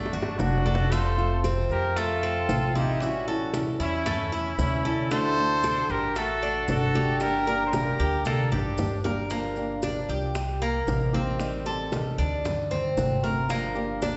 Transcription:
Already playing: A3 D4
0.06 high bongo
0.13 G1 F#4, high conga, low conga, maracas
0.23 high bongo
0.38 F1 D3 A3 D4 F#4, low bongo, high conga, maracas
0.66 A3 D4 F#4 A4, high conga, maracas
0.75 low bongo
0.91 C3 F3 A3 C4 F4 A4 C5, high bongo, maracas
1.18 F3 A3 C4 F4, high conga, maracas
1.44 F3 A3 C4 F4, high bongo, high conga, maracas
1.69 F2 G4 A#4, maracas
1.96 A3 F4 A4, muted nylon-string guitar stroke, high bongo, high conga, maracas
2.23 C4, high bongo, high conga, maracas
2.49 A1 F3 A3 C4 F4, high bongo, low bongo, high conga, maracas
2.75 F3 A3 C4 D#4 E4 F4 G4, high bongo, high conga, maracas
3.01 E3 G3 C#4 E4 F#4, high bongo, maracas
3.27 G3 C#4 E4 A4, high conga, maracas
3.53 E3 G3 C#4 E4, high bongo, high conga, maracas
3.80 E2 C#4 E4, high conga, maracas
4.06 A3, muted nylon-string guitar stroke, high bongo, high conga, low conga, maracas
4.32 E4, high bongo, high conga, maracas
4.58 D2 E3 G3 C#4 E4, high bongo, low bongo, high conga, maracas
4.84 G3 C#4 E4 A4, high bongo, high conga, maracas
5.10 D3 A3 D4 F#4 A4 C5, high bongo, high conga, maracas
5.37 A3 D4 F#4, high conga, maracas
5.63 D3 A3 D4 F#4, high bongo, high conga, maracas
5.89 A1 G4 A#4, maracas
6.16 A3 F#4 A4, muted nylon-string guitar stroke, high bongo, high conga, maracas
6.42 D4, high bongo, high conga, maracas
6.68 G1 D3 A3 D4 F#4 A4, high bongo, low bongo, high conga, maracas
6.94 A3 D4 F#4 G4, high bongo, high conga, maracas
7.20 D3 G3 A#3 D4 G4 A#4, high bongo, maracas
7.47 G3 A#3 D4 G4 A#4, high conga, maracas
7.66 A4 C5
7.73 G3 A#3 D4 G4 A#4, high bongo, high conga, maracas
7.99 D2 G4, high conga, maracas
8.24 A#3 D4 A4, muted nylon-string guitar stroke, high bongo, high conga, maracas
8.51 A1 D4 G4, high bongo, low conga, maracas
8.78 G1 G3 A#3 D4 G4, high bongo, low bongo, low conga, maracas
9.04 G3 A#3 D4 G4 A#4, high bongo, low conga, maracas
9.30 D3 F3 A#3 D4 G4, high bongo, high conga, maracas
9.56 F3 A#3 D4 G4, high conga, maracas
9.82 F3 A#3 D4 G4, high bongo, high conga, maracas
10.09 C2 G4, maracas
10.35 muted nylon-string guitar stroke, high bongo, high conga, maracas
10.62 A#3, high bongo, high conga, maracas
10.87 A1 D#3 A#3 C4 G4, high bongo, low bongo, high conga, maracas
11.13 D#3 A#3 C4 G4, high bongo, high conga, maracas
11.39 D#3 G3 C4 G4, high bongo, high conga, maracas
11.66 G3 C4 G4 A4, high conga, maracas
11.92 D#3 G3 C4 G4, high bongo, high conga, maracas
12.18 D2 D4, high conga, maracas
12.45 muted nylon-string guitar stroke, high bongo, high conga, low conga, maracas
12.71 C4, high bongo, high conga, low conga, maracas
12.97 G1 D3 A3 C4 F#4, high bongo, low bongo, high conga, maracas
13.23 A3 C4 F#4 A#4, high bongo, high conga, maracas
13.49 D3 F3 A#3 D4 G4, high bongo, high conga, maracas
13.75 F3 A#3 D4 G4, high conga, maracas
14.02 F3 A#3 D4 G4, high bongo, high conga, maracas

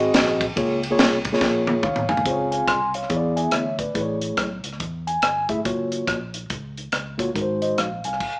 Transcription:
Already playing: G#2 C4 F#4 G#4 D#5
0.14 A#1, kick, snare, ride
0.41 kick, ride
0.56 C#2 C#3 A#3 F4 G#4 C#5, kick, ride
0.83 ride
0.90 A#3 F4 G#4 C#5
0.99 C2, snare, ride
1.25 kick, ride
1.32 A#3 F4 G#4 C#5, snare
1.41 A#1, kick, snare
1.67 high tom
1.83 D#2 C#5 F5, kick, mid tom
1.96 mid tom
2.09 D2 F5 G#5, floor tom
2.17 floor tom
2.25 C#2 C#3 C4 F4 G#4 C5, kick, closed hi-hat
2.32 C#5
2.52 F5 G#5, closed hi-hat
2.67 C2 G#5 C6, kick, cross-stick, closed hi-hat
2.94 C#5 F5, closed hi-hat
3.03 cross-stick
3.09 E2 E3 B3 E4 G#4 C#5, kick, closed hi-hat
3.16 D5
3.37 E5 G#5, closed hi-hat
3.51 D2 C#5 E5, cross-stick, closed hi-hat
3.79 B4 D5, kick, closed hi-hat
3.94 A1 A2 A3 E4 G#4 B4, kick, closed hi-hat
4.01 C#5
4.21 closed hi-hat
4.37 B1, kick, cross-stick, closed hi-hat
4.64 C#2, closed hi-hat
4.73 cross-stick
4.80 E2, kick, closed hi-hat
5.07 G#5, closed hi-hat
5.22 G1 G#5, cross-stick, closed hi-hat
5.49 A3 E4 G#4 E5, kick, closed hi-hat
5.64 F#1 A#3 F4 F#4 C#5, kick, closed hi-hat
5.92 closed hi-hat
6.08 A#1, kick, cross-stick, closed hi-hat
6.34 closed hi-hat
6.50 C#2, kick, closed hi-hat
6.77 closed hi-hat
6.92 C#2, cross-stick, closed hi-hat
7.18 A#3 F4 F#4 C#5, kick, closed hi-hat
7.34 G#1 G#2 G#3 D#4 F#4 A#4, kick, closed hi-hat
7.42 C5
7.62 C5 D#5, closed hi-hat
7.78 A#1 F5, cross-stick, closed hi-hat
8.04 C2 F5 G#5, closed hi-hat
8.13 cross-stick
8.20 kick, crash

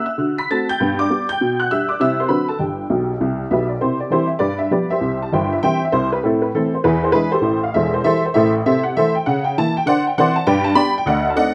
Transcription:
0.06 E5 E6
0.18 D3 F#4
0.38 B5 B6
0.50 A3 C4 F#4 A5 A6
0.69 G5 G6
0.80 G2 B3
0.99 D5 D6
1.10 G3 B3 G4
1.29 G5 G6
1.41 B2
1.60 F#5 F#6
1.71 G3 D4 G4 E5 E6
1.89 D5 D6
1.99 C3 G3 C4 E4 G4 E5 E6
2.20 C5 C6
2.29 D3 F#3 C4 D4 F#4 B4 B5
2.48 A4 A5
2.59 G1 G2 G4 G5
2.90 B1 B2
3.20 C2 C3
3.51 B1 B2 G4 B4 E5
3.69 D5
3.81 C3 E4 G4 C5
4.00 D5
4.10 E3 G3 C4 E4 G4 C5
4.27 E5
4.39 G2 G4 B4 D5
4.59 E5
4.71 F3 G3 B3 G4 B4 D5
4.90 G4 C5 E5
5.01 C2 C3
5.22 A5
5.32 G1 G2 C5 E5 G5
5.52 E5
5.63 E3 G3 C4 C5 E5 G5
5.85 E5
5.92 C2 C3 E4 G4 C5
6.12 B4
6.23 A2 C4 E4 A4
6.42 B4
6.54 E3 A3 C4 E4 A4
6.74 C5
6.84 E2 E4 G#4 B4
7.04 C5
7.12 E3 G#3 D4 E4 G#4 B4
7.32 G4 A4 C5
7.41 A1 A2
7.63 F5
7.74 E1 E2 A4 C5 E5
7.94 C5
8.04 E3 G3 E4 A4 C5 E5
8.26 C5
8.34 A1 A2 A4 C5 E5
8.66 C3 A4 C5 E5
8.83 F#5
8.97 E3 A3 E4 A4 C5 E5
9.15 G5
9.26 C#3 F#5
9.44 G5
9.58 E3 A#3 E4 A5
9.77 G5
9.86 D3 C5 D5 F#5
10.07 G5
10.18 E3 C4 E4 C5 D5 F#5
10.36 A5
10.47 G2 B4 D5 G5
10.64 A5
10.75 G3 B3 D4 D5 G5 B5
10.98 G5
11.06 D2 D5 D#5 F#5
11.30 A5
11.36 A3 C4 D#4 D5 D#5 F#5

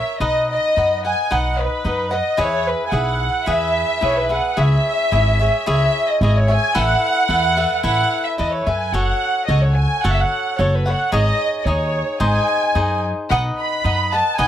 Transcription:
Already playing: A#4 C#5 E5
0.20 B1 D#4 B4 D#5 F#5
0.50 D#5
0.76 F#2 D#4 B4 D#5 F#5
1.05 B4 D#5 F#5 G#5
1.31 B1 D#4 B4 D#5 F#5
1.60 B4
1.84 F#2 D#4 B4 D#5 F#5
2.11 B4 D#5 F#5
2.37 E2 E4 G#4 B4 C#5 E5
2.66 B4
2.85 G#5
2.91 B1 E4 G#4 B4 E5 F#5
3.46 E2 E4 G#4 B4 E5
4.01 B1 E4 G#4 B4 C#5 E5
4.18 B4
4.29 G#4 B4 E5 F#5
4.57 C#2 E4 G#4 C#5 E5
5.12 G#1 E4 G#4 C#5 E5
5.39 G#4 C#5 E5
5.66 C#2 E4 G#4 C#5 E5
5.70 E5
6.09 D#5
6.21 G#1 E4 G#4 C#5 D#5 E5
6.37 C#5
6.48 G#4 C#5 E5 G#5
6.75 A1 E4 A4 B4 E5 F#5
7.29 E2 E4 A4 B4 E5
7.57 A4 B4 E5
7.83 A1 E4 A4 B4 E5 F#5
8.25 E5
8.38 E2 E4 A4 B4 D#5 E5
8.52 C#5
8.67 F#2 A4 B4 E5 G#5
8.93 F#1 F#4 A4 C#5 F#5
9.46 C#2 F#4 A4 C#5 D#5 F#5
9.62 C#5
9.74 G#5
10.03 F#1 F#4 A4 C#5 F#5
10.12 E5
10.20 F#5
10.59 F#1 F#4 A4 C#5 F#5
10.75 B4
10.86 A4 C#5 F#5
11.12 G#1 D#4 G#4 C#5 D#5
11.60 D#5
11.65 D#2 D#4 G#4 C#5 D#5
12.20 G#1 D#4 G#4 C5 D#5 G#5
12.75 F#2 D#4 G#4 C5 D#5
13.30 B1 D#4 B4 D#5 F#5
13.59 B5
13.84 F#2 D#4 B4 D#5 F#5
14.12 B4 D#5 F#5 A5
14.38 B1 D#4 B4 D#5 F#5 G#5

